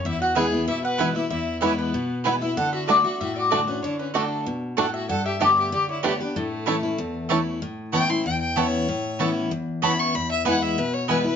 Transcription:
<<
  \new Staff \with { instrumentName = "Mandolin" } { \time 4/4 \key a \major \tempo 4 = 190 e''8 fis''8 gis''4 e''8 fis''4 e''8 | e''4 cis''8 b'4. fis''8 e''8 | fis''8 e''8 d''8 e''8 e''8 d''4 b'8 | cis''8 b'8 a'4 r4 fis''8 e''8 |
fis''8 e''8 d''8 e''8 d''8 cis''8 cis''8 b'8 | a'2.~ a'8 r8 | r1 | r1 |
r1 | }
  \new Staff \with { instrumentName = "Mandolin" } { \time 4/4 \key a \major r4 <b e' b' gis''>8 r4. <b e' b' gis''>8 r8 | r4 <b e' b' gis''>8 r4. <b e' b' gis''>8 r8 | r4 <a fis' d'' a''>8 r4. <a fis' d'' a''>8 r8 | r4 <a fis' d'' a''>8 r4. <a fis' d'' a''>8 r8 |
r4 <b g' d'' a''>8 r4. <b g' d'' a''>8 r8 | r4 <a e' cis'' a''>8 r4. <a e' cis'' a''>8 r8 | r4 <b e' cis'' a''>8 r4. <b e' cis'' a''>8 r8 | r4 <b e' cis'' a''>8 r4. <b e' cis'' a''>8 r8 |
r4 <b e' b' gis''>8 r4. <b e' b' gis''>8 r8 | }
  \new Staff \with { instrumentName = "Fiddle" } { \time 4/4 \key a \major e'8 fis'8 gis'4 e'8 b'4 e'8 | e'4 e'8 b4. b'8 e'8 | a'8 fis'8 fis'8 fis'8 fis'8 fis'4 cis'8 | d'8 cis'8 d'4 r4 a'8 fis'8 |
a'8 g'8 g'8 g'8 g'8 e'8 g'8 d'8 | a2.~ a8 r8 | r4 g''8 c'''8 g''8 g''8 cis''4~ | cis''4 r2 b''8 cis'''8 |
b''8 e''8 fis''8 e''8 b'8 cis''8 b'8 b'8 | }
  \new Staff \with { instrumentName = "Five-string banjo" } { \time 4/4 \key a \major r4 <b e'>8 r4. <b e'>8 r8 | r4 <b e'>8 r4. <b e'>8 r8 | r4 <a d' fis'>8 r4. <a d' fis'>8 r8 | r4 <a d' fis'>8 r4. <a d' fis'>8 r8 |
r4 <a d' g'>8 r4. <a d' g'>8 r8 | r4 <a cis' e'>8 r4. <a cis' e'>8 r8 | r1 | r1 |
r1 | }
  \new Staff \with { instrumentName = "Steel-string acoustic guitar" } { \time 4/4 \key a \major << { r4 <e gis b e'>8 <b e'>8 r4 <e gis b e'>8 <b e'>8 | r4 <e gis b e'>4 r4 <e gis b e'>8 <b e'>8 | r4 <d a d' fis'>8 <d' fis'>8 r4 <d a d' fis'>8 <d' fis'>8 | r4 <d a d' fis'>4 r2 |
r4 <d a b g'>4 r4 <d a b g'>8 <b g'>8 | r4 <e a cis' e'>8 <cis' e'>8 r4 <e a cis' e'>4 | r4 <e b cis' e'>8 <cis' e'>8 r4 <e b cis' e'>4 | r4 <e b cis' e'>4 r4 <e b cis' e'>4 |
r4 <e gis b e'>4 r4 <e gis b e'>8 <b e'>8 | } \\ { e,2 b,2 | e,2 b,2 | d2 a,2 | d2 b,4 a,4 |
g,2 d2 | a,2 e,2 | a,2 e,2 | a,2 e,2 |
e,2 b,2 | } >> }
>>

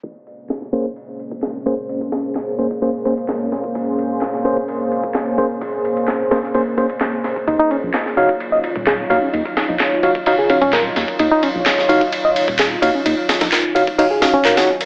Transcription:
<<
  \new Staff \with { instrumentName = "Tine electric piano" } { \time 4/4 \key bes \minor \tempo 4 = 129 r4. <bes des' aes' c''>16 r4. r16 <bes des' aes' c''>16 r16 | r4. <bes des' aes' c''>16 r16 <bes des' aes' c''>16 r16 <bes des' aes' c''>16 r4 r16 | r4. <bes des' aes' c''>16 r4. r16 <bes des' aes' c''>16 r16 | r4. <bes des' aes' c''>16 r16 <bes des' aes' c''>16 r16 <bes des' aes' c''>16 r4 r16 |
r4. <ees' ges' des'' f''>16 r4. r16 <ees' ges' des'' f''>16 r16 | r4. <ees' ges' des'' f''>16 r16 <ees' ges' des'' f''>16 r16 <ees' ges' des'' f''>16 r4 r16 | r4. <ees' ges' des'' f''>16 r4. r16 <ees' ges' des'' f''>16 r16 | r4. <ees' ges' des'' f''>16 r16 <ees' ges' des'' f''>16 r16 <ees' ges' des'' f''>16 r16 <ees' ges' des'' f''>16 <ees' ges' des'' ges''>16 r8 | }
  \new Staff \with { instrumentName = "Ambient pad" } { \time 4/4 \key bes \minor <bes des' aes' c''>1~ | <bes des' aes' c''>1~ | <bes des' aes' c''>1~ | <bes des' aes' c''>1 |
<ges ees' f' des''>1~ | <ges ees' f' des''>1~ | <ges ees' f' des''>1~ | <ges ees' f' des''>1 | }
  \new Staff \with { instrumentName = "Reed electric piano" } { \time 4/4 \key bes \minor r1 | r1 | r1 | r1 |
ees'16 ees'16 des'16 r8. ees'16 r8 ees''16 r8 aes'16 r16 ees'16 des'16 | ees'16 r8 ees'16 r4 ees'16 aes'16 des'16 des'16 bes'16 r8. | ees'16 ees'16 des'16 r8. ees'16 r8 ees''16 r8 aes'16 r16 ees'16 des'16 | ees'16 r8 ees'16 r4 ees'16 aes'16 des'16 des'16 bes'16 r8. | }
  \new Staff \with { instrumentName = "Sub bass" } { \clef bass \time 4/4 \key bes \minor r1 | r1 | r1 | r1 |
ees,16 r8 bes,,16 r4. r16 ees,,8 r16 ees,16 r16 | ees,16 r8 bes,,16 r4. r16 ees,,8 r16 ees,16 r16 | ees,16 r8 bes,,16 r4. r16 ees,,8 r16 ees,16 r16 | ees,16 r8 bes,,16 r2. | }
  \new DrumStaff \with { instrumentName = "Drums" } \drummode { \time 4/4 <bd cymr>8 cymr8 <hc cymr sn>16 sn16 cymr16 bd16 cymr8 cymr16 bd16 <hc cymr sn>8 cymr8 | cymr16 bd16 <cymr sn>8 <hc hho sn>8 cymr16 bd16 cymr8 <bd cymr>16 cymr16 <hc cymr sn>8 <cymr sn>16 bd16 | <bd cymr>8 cymr8 <hc cymr sn>16 sn16 cymr16 bd16 cymr8 cymr16 bd16 <hc cymr sn>8 <bd cymr>8 | <bd cymr>8 cymr16 cymr16 <hc hho sn>8 <cymr sn>16 sn16 cymr8 <bd cymr>16 cymr16 <hc cymr sn>8 <cymr sn>16 bd16 |
<bd cymr>8 cymr8 <hc cymr sn>16 sn16 cymr16 bd16 cymr8 cymr16 bd16 <hc cymr sn>8 cymr8 | cymr16 bd16 <cymr sn>8 <hc hho sn>8 cymr16 bd16 cymr8 <bd cymr>16 cymr16 <hc cymr sn>8 <cymr sn>16 bd16 | <bd cymr>8 cymr8 <hc cymr sn>16 sn16 cymr16 bd16 cymr8 cymr16 bd16 <hc cymr sn>8 <bd cymr>8 | <bd cymr>8 <cymr sn>16 <cymr sn>16 <hc cymr sn>8 cymr16 bd16 cymr8 <hho sn>8 <hc cymr>16 <hho sn>8 cymr16 | }
>>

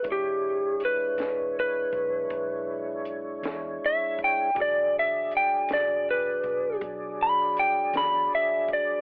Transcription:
<<
  \new Staff \with { instrumentName = "Lead electric guitar" } { \time 12/8 \key e \mixolydian \tempo 4. = 53 g'4 b'4 b'2 r4 e''8 g''8 | d''8 e''8 g''8 d''8 b'4 r8 b''8 g''8 b''8 e''8 d''8 | }
  \new Staff \with { instrumentName = "Tonewheel organ" } { \time 12/8 \key e \mixolydian <gis d' e' cis''>1. | <fis d' gis' d''>1. | }
  \new Staff \with { instrumentName = "Fingered electric bass" } { \clef bass \time 12/8 \key e \mixolydian e,,4. e,,4 b,,8 b,,4. e,8 r4 | e,,4. e,,4 b,,8 b,,4. e,8 r4 | }
  \new DrumStaff \with { instrumentName = "Drums" } \drummode { \time 12/8 <hh bd>4 hh8 <hh sn>4 <hh bd>8 <hh bd>4 hh8 <hh sn>4 <hh bd>8 | <hh bd>4 hh8 <hh sn>4 <hh bd>8 <hh bd>4 hh8 <hh sn>4 <hh bd>8 | }
>>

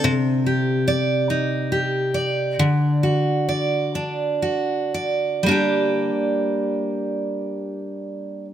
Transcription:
\new Staff \with { instrumentName = "Steel-string acoustic guitar" } { \time 6/8 \key g \minor \tempo 4. = 42 c8 g'8 d''8 ees'8 g'8 d''8 | d8 fis'8 d''8 d'8 fis'8 d''8 | <g bes d' g'>2. | }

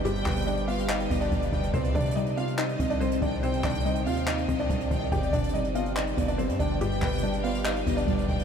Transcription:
<<
  \new Staff \with { instrumentName = "Violin section" } { \time 4/4 \key c \minor \tempo 4 = 142 g''4. f''4 ees''8 d''8 g''8 | d''4. f''8 ees''4. g''8 | g''4. f''4 ees''4 g''8 | d''4. ees''8 d''4. g''8 |
g''4. f''4 ees''8 d''8 g''8 | }
  \new Staff \with { instrumentName = "Felt piano" } { \time 4/4 \key c \minor <g g'>8 <b b'>8 <d' d''>8 <f' f''>8 <ees' ees''>8. <d' d''>4~ <d' d''>16 | <c' c''>8 <d' d''>8 <ees' ees''>8 <f' f''>8 <ees' ees''>8. <d' d''>16 <c' c''>8 <d' d''>8 | <c' c''>8 <d' d''>8 <ees' ees''>8 <f' f''>8 <ees' ees''>8. <d' d''>4~ <d' d''>16 | <g' g''>8 <d' d''>8 <ees' ees''>8 <f' f''>8 <ees' ees''>8. <d' d''>16 <c' c''>8 <d' d''>8 |
<g g'>8 <b b'>8 <d' d''>8 <f' f''>8 <ees' ees''>8. <d' d''>4~ <d' d''>16 | }
  \new Staff \with { instrumentName = "Ambient pad" } { \time 4/4 \key c \minor <g g' b'>1 | <c ees c'>1~ | <c ees c'>1 | <g g' b'>1~ |
<g g' b'>1 | }
  \new Staff \with { instrumentName = "Synth pluck" } { \clef bass \time 4/4 \key c \minor <g, d g b>8 b,8 g8 b4 b8 g8 d8 | c8 ees8 g8 c'8 ees'8 c'8 g8 ees8 | c8 ees8 g8 c'4 c'8 g8 ees8 | g,8 b,8 g8 b4 b8 g8 d8 |
g,8 b,8 g8 b4 b8 g8 d8 | }
  \new Staff \with { instrumentName = "808-style bass" } { \clef bass \time 4/4 \key c \minor g,,8 g,,2 g,,8 g,,8 f,,8 | c,8 c2 c,4 c,8~ | c,8 c,4 ees,4 c,8 c,8 c,8 | g,,8 g,,2 g,,8. g,16 g,,8~ |
g,,8 g,,2 g,,8 g,,8 f,,8 | }
  \new DrumStaff \with { instrumentName = "Drums" } \drummode { \time 4/4 hh16 hh16 <hc hh bd>32 hh32 hh32 hh32 hh16 hh16 hho16 hh16 <hc hh>16 hh16 <hh bd>16 hh16 <hh bd>16 hh16 <hh bd>16 hh16 | <hh bd>16 hh16 <hh bd>32 hh32 hh32 hh32 hh16 hh16 hh16 hh16 <hc hh>16 hh16 <hh bd>16 hh16 hh16 hh16 <hh bd>8 | hh16 hh16 <hc hh bd>32 hh32 hh32 hh32 hh16 hh16 hho16 hh16 <hc hh>16 hh16 <hh bd>16 hh16 <hh bd>16 hh16 <hh bd>8 | <hh bd>16 hh16 <hh bd>32 hh32 hh32 hh32 hh16 hh16 hh16 hh16 <hc hh>16 hh16 <hh bd>16 hh16 hh16 hh16 <hh bd>8 |
hh16 hh16 <hc hh bd>32 hh32 hh32 hh32 hh16 hh16 hho16 hh16 <hc hh>16 hh16 <hh bd>16 hh16 <hh bd>16 hh16 <hh bd>16 hh16 | }
>>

